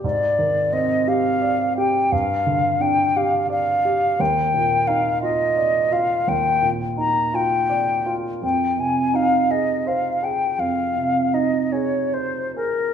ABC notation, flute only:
X:1
M:12/8
L:1/8
Q:3/8=57
K:Eb
V:1 name="Flute"
d2 e f2 g f2 g f f2 | g2 f e2 f g2 b g2 z | g a f e f g f2 e _d c B |]